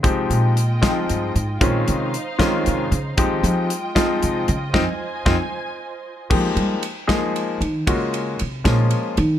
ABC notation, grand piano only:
X:1
M:6/8
L:1/8
Q:3/8=77
K:Fm
V:1 name="Grand piano"
[F,A,CEG]2 z [F,A,CEF]2 z | [E,A,CDF]2 z [E,A,CDF]2 z | [F,A,CEG]2 z [F,A,CEF]2 z | [CEF] z [CEF] z3 |
[F,A,B,EG]2 z [F,A,B,EA]2 z | [A,B,DF_G]2 z [F,A,B,DF]2 z |]